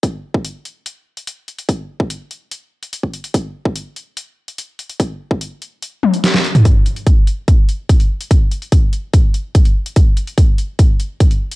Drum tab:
HH |x---x-x-x--xx-xx|x---x-x-x--xx-xx|x---x-x-x--xx-xx|x---x-x-x--xx-xx|
SD |----------------|----------------|----------------|------------oo--|
T1 |----------------|----------------|----------------|----------o-----|
T2 |----------------|----------------|----------------|---------------o|
BD |o--o------------|o--o---------o--|o--o------------|o--o---------o--|

HH |x-xxx-x-x-x-xx-x|x-xxx-x-x-x-xx-x|x-xxx-x-x-x-xx-x|
SD |----------------|----------------|----------------|
T1 |----------------|----------------|----------------|
T2 |----------------|----------------|----------------|
BD |o---o---o---o---|o---o---o---o---|o---o---o---o---|